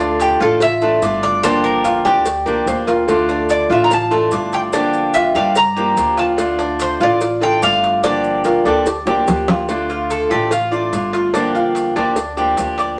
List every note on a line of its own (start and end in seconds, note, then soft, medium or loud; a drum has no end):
0.00 0.34 D2 loud
0.00 0.39 D3 medium
0.00 0.40 A3 medium
0.00 0.39 D4 medium
0.00 0.42 D4 medium
0.00 0.41 F4 medium
0.20 0.39 G4 medium
0.20 cowbell medium
0.20 maracas medium
0.40 0.98 A1 loud
0.40 0.61 A3 medium
0.40 0.61 D4 medium
0.40 0.80 F4 medium
0.40 0.60 F4 medium
0.40 0.62 A4 medium
0.40 maracas soft
0.60 1.23 E5 loud
0.60 muted steel-string acoustic guitar stroke medium
0.60 cowbell loud
0.60 maracas medium
0.81 1.01 A3 medium
0.81 1.02 D4 medium
0.81 1.01 F4 medium
0.81 1.02 A4 medium
0.81 maracas soft
1.02 1.99 G1 loud
1.02 1.42 D3 medium
1.02 1.43 A3 medium
1.02 1.43 D4 medium
1.02 1.43 F4 medium
1.02 1.42 D5 medium
1.02 cowbell medium
1.02 maracas medium
1.23 1.44 D5 loud
1.23 cowbell medium
1.23 maracas soft
1.43 2.04 D3 medium
1.43 2.07 F3 medium
1.43 2.05 A#3 medium
1.43 1.83 D4 medium
1.43 2.05 D4 medium
1.43 2.04 G4 loud
1.43 1.62 C5 loud
1.43 cowbell loud
1.43 maracas medium
1.64 2.06 A#4 medium
1.64 maracas soft
1.84 2.04 F4 medium
1.84 cowbell medium
1.84 maracas medium
2.05 2.43 D2 loud
2.05 2.25 F3 medium
2.05 2.25 A#3 medium
2.05 2.25 D4 medium
2.05 2.84 G4 medium
2.05 2.25 G4 medium
2.05 2.45 D5 medium
2.05 cowbell medium
2.05 maracas soft
2.26 muted steel-string acoustic guitar stroke medium
2.26 cowbell loud
2.26 maracas medium
2.46 2.66 C2 medium
2.46 2.66 F3 medium
2.46 2.66 A#3 medium
2.46 2.67 D4 medium
2.46 2.86 G4 medium
2.46 2.66 G4 medium
2.46 2.67 A#4 loud
2.46 maracas soft
2.66 3.64 D2 medium
2.66 3.07 F3 soft
2.66 3.08 A#3 medium
2.66 3.08 D4 medium
2.66 3.08 G4 medium
2.66 2.87 C5 loud
2.66 cowbell medium
2.66 maracas medium
2.87 3.27 F4 medium
2.87 3.07 A#4 loud
2.87 cowbell medium
2.87 maracas soft
3.07 3.69 D3 medium
3.07 3.69 A3 medium
3.07 3.71 D4 medium
3.07 3.70 F4 medium
3.07 3.37 A4 medium
3.07 cowbell loud
3.07 maracas medium
3.29 3.69 D4 medium
3.29 maracas soft
3.49 3.69 D5 medium
3.49 cowbell medium
3.49 maracas medium
3.69 4.28 A1 loud
3.69 3.90 A3 medium
3.69 3.90 D4 medium
3.69 4.10 F4 medium
3.69 3.90 F4 medium
3.69 3.84 E5 medium
3.69 maracas soft
3.84 3.91 A#5 medium
3.91 4.54 A5 loud
3.91 muted steel-string acoustic guitar stroke medium
3.91 cowbell loud
3.91 maracas medium
4.11 4.31 A3 medium
4.11 4.31 D4 medium
4.11 4.31 F4 medium
4.11 4.31 A4 medium
4.11 maracas soft
4.31 5.29 G1 medium
4.31 4.71 D3 soft
4.31 4.73 A3 medium
4.31 4.72 D4 medium
4.31 4.73 F4 medium
4.31 4.72 D5 medium
4.31 cowbell medium
4.31 maracas medium
4.52 4.59 G5 medium
4.52 cowbell medium
4.52 maracas soft
4.72 5.34 D3 medium
4.72 5.36 F3 medium
4.72 5.34 A#3 medium
4.72 5.13 D4 medium
4.72 5.35 D4 medium
4.72 5.33 G4 medium
4.72 cowbell loud
4.72 maracas medium
4.93 maracas soft
5.14 5.35 F4 medium
5.14 5.33 E5 medium
5.14 cowbell medium
5.14 maracas medium
5.34 5.93 G2 medium
5.34 5.54 F3 medium
5.34 5.55 A#3 medium
5.34 5.55 D4 medium
5.34 5.55 G4 medium
5.34 5.75 D5 medium
5.34 5.55 F5 medium
5.34 cowbell medium
5.34 maracas soft
5.55 6.19 A#5 loud
5.55 muted steel-string acoustic guitar stroke medium
5.55 cowbell loud
5.55 maracas medium
5.76 5.94 F3 medium
5.76 5.96 A#3 medium
5.76 5.96 D4 medium
5.76 5.96 G4 medium
5.76 6.17 G4 medium
5.76 maracas soft
5.96 6.94 D2 medium
5.96 6.36 F3 medium
5.96 6.37 A#3 medium
5.96 6.37 D4 soft
5.96 6.38 G4 medium
5.96 cowbell medium
5.96 maracas medium
6.17 6.58 F4 medium
6.17 6.24 A5 medium
6.17 cowbell medium
6.17 maracas soft
6.37 6.99 D3 medium
6.37 6.99 A3 medium
6.37 7.01 D4 medium
6.37 7.00 F4 medium
6.37 cowbell loud
6.37 maracas medium
6.59 6.99 D4 medium
6.59 maracas soft
6.80 7.02 C5 loud
6.80 cowbell medium
6.80 maracas medium
7.00 7.58 A1 medium
7.00 7.20 A3 medium
7.00 7.20 D4 medium
7.00 7.20 F4 medium
7.00 7.41 F4 medium
7.00 7.44 D5 loud
7.00 maracas soft
7.20 muted steel-string acoustic guitar stroke medium
7.20 cowbell loud
7.20 maracas medium
7.41 7.61 A3 medium
7.41 7.61 D4 medium
7.41 7.61 F4 medium
7.41 7.62 A4 medium
7.41 7.63 G5 loud
7.41 maracas soft
7.61 8.60 G1 loud
7.61 8.02 D3 medium
7.61 8.03 A3 medium
7.61 8.03 D4 medium
7.61 8.03 F4 medium
7.61 8.02 D5 medium
7.61 8.01 F5 loud
7.61 cowbell medium
7.61 maracas medium
7.83 cowbell medium
7.83 maracas soft
8.03 8.64 D3 medium
8.03 8.65 F3 medium
8.03 8.65 A#3 medium
8.03 8.44 D4 medium
8.03 8.65 D4 medium
8.03 8.64 G4 medium
8.03 9.23 D5 loud
8.03 cowbell loud
8.03 maracas medium
8.24 maracas soft
8.44 8.65 F4 medium
8.44 8.64 A#4 loud
8.44 cowbell medium
8.44 maracas medium
8.65 9.04 D2 medium
8.65 8.86 F3 medium
8.65 8.86 A#3 medium
8.65 8.86 D4 medium
8.65 8.85 G4 medium
8.65 8.86 A4 loud
8.65 9.05 D5 medium
8.65 cowbell medium
8.65 maracas soft
8.85 8.91 G4 loud
8.85 muted steel-string acoustic guitar stroke medium
8.85 cowbell loud
8.85 maracas medium
9.06 9.26 C2 medium
9.06 9.26 F3 medium
9.06 9.27 A#3 medium
9.06 9.27 D4 medium
9.06 9.11 F4 medium
9.06 9.26 G4 medium
9.06 9.47 G4 medium
9.06 high bongo loud
9.06 maracas soft
9.26 10.25 D2 medium
9.26 9.68 F3 soft
9.26 9.68 A#3 medium
9.26 9.68 D4 medium
9.26 9.65 G4 medium
9.26 9.69 G4 medium
9.26 cowbell medium
9.26 low bongo medium
9.26 maracas medium
9.48 9.69 F4 medium
9.48 cowbell medium
9.48 low bongo loud
9.48 maracas soft
9.68 10.29 D3 medium
9.68 10.30 A3 medium
9.68 10.31 D4 medium
9.68 10.29 F4 medium
9.68 cowbell loud
9.68 maracas medium
9.90 10.30 F4 medium
9.90 maracas soft
10.10 10.30 A4 medium
10.10 cowbell medium
10.10 maracas medium
10.30 10.89 A1 medium
10.30 10.50 A3 medium
10.30 10.50 D4 medium
10.30 10.50 F4 medium
10.30 10.51 G4 medium
10.30 10.51 A4 medium
10.30 maracas soft
10.51 10.71 F4 medium
10.51 10.72 F4 medium
10.51 muted steel-string acoustic guitar stroke medium
10.51 cowbell loud
10.51 maracas medium
10.72 10.93 A3 medium
10.72 10.92 D4 medium
10.72 10.92 F4 medium
10.72 11.12 D5 medium
10.72 maracas soft
10.92 11.90 G1 medium
10.92 11.33 D3 soft
10.92 11.34 A3 soft
10.92 11.34 D4 medium
10.92 11.34 F4 medium
10.92 cowbell medium
10.92 maracas medium
11.13 11.33 F4 medium
11.13 cowbell medium
11.13 maracas soft
11.34 11.95 D3 medium
11.34 11.97 F3 medium
11.34 11.96 A#3 medium
11.34 11.54 D4 medium
11.34 11.96 D4 medium
11.34 11.95 G4 medium
11.34 cowbell loud
11.34 maracas medium
11.55 11.95 F4 medium
11.55 maracas soft
11.75 cowbell medium
11.75 maracas medium
11.96 12.54 D2 medium
11.96 12.16 F3 medium
11.96 12.16 A#3 medium
11.96 12.36 D4 medium
11.96 12.16 D4 medium
11.96 12.16 G4 medium
11.96 cowbell medium
11.96 maracas soft
12.16 muted steel-string acoustic guitar stroke medium
12.16 cowbell loud
12.16 maracas medium
12.37 12.57 F3 medium
12.37 12.58 A#3 medium
12.37 12.57 D4 medium
12.37 12.77 G4 medium
12.37 12.57 G4 medium
12.37 maracas soft
12.57 12.99 D2 medium
12.57 12.98 F3 soft
12.57 12.99 A#3 soft
12.57 12.99 D4 medium
12.57 12.99 G4 medium
12.57 cowbell medium
12.57 maracas medium
12.78 12.99 D5 medium
12.78 cowbell medium
12.78 maracas soft